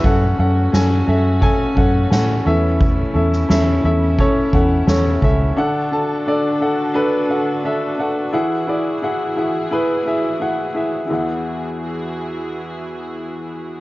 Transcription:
0.04 F#2 A3 C#4 F#4 A4 F#5, kick
0.38 F#2 C#4 A4 F#5
0.72 F#2 C#4 A4 G#5, snare
1.07 F#2 C#4 A4 E5
1.41 C#4 A4 G#5, kick
1.76 F#2 C#4 A4 F#5, kick
2.10 A2 C#4 A4 F#5, snare
2.45 E2 E3 C#4 E4 A4 E5
2.81 kick
3.14 E2 C#4 A4 E5
3.33 snare
3.49 E2 C#4 A4 E5, snare
3.84 E2 C#4 A4 E5
4.18 C#4 A4 C#5, kick
4.53 E2 C#4 A4 F#5, kick
4.87 E2 C#4 A4 C#5, snare
5.22 C#2 C#4 A4 E5, kick
5.56 D3 D4 F#4 A4 F#5
5.91 D4 A4 A5
6.26 D4 A4 D5
6.60 D4 A4 F#5
6.94 D4 A4 B4
7.29 D4 A4 F#5
7.63 D4 A4 E5
7.98 D4 A4 F#5
8.32 E3 E4 G#4 F#5
8.67 E4 G#4 D5
9.02 E4 G#4 F#5
9.36 E4 G#4 F#5
9.71 E4 G#4 B4
10.06 E4 G#4 E5
10.40 E4 G#4 F#5
10.75 E4 G#4 E5
11.07 E2 E3 E4 F#4 G#4
11.14 F#5

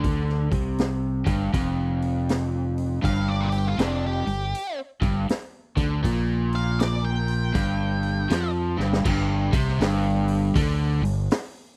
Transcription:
Already playing: D2 D3
0.04 kick, open hi-hat
0.29 snare
0.52 C2 C3, kick, open hi-hat
0.78 snare, open hi-hat
1.26 G1 G2, kick, open hi-hat
1.53 F1 F2, kick, open hi-hat
2.02 open hi-hat
2.29 snare, open hi-hat
2.78 open hi-hat
3.02 G1 G2 F5, kick, open hi-hat
3.28 D5
3.41 A#4
3.52 G4, open hi-hat
3.67 F4
3.78 F1 F2 D4, snare, open hi-hat
4.07 G4
4.27 G1 G2, open hi-hat
4.55 open hi-hat
5.01 G1 G2, kick, open hi-hat
5.29 muted overdriven electric guitar stroke, muted fingered electric bass stroke, snare, open hi-hat
5.77 D2 D3, kick, open hi-hat
6.03 A#1 A#2, kick, open hi-hat
6.53 F5, open hi-hat
6.80 D5, snare, open hi-hat
7.05 G5
7.28 open hi-hat
7.54 G1 G2, kick, open hi-hat
8.03 open hi-hat
8.30 F2 F3, snare, open hi-hat
8.77 G1 G2, snare
8.93 snare
9.05 G1 G2, kick, crash
9.52 C2 C3, kick, open hi-hat
9.68 snare
9.78 G1 G2, snare, open hi-hat
10.28 open hi-hat
10.55 D2 D3, kick, open hi-hat
11.02 G1 G2, open hi-hat
11.31 snare, open hi-hat

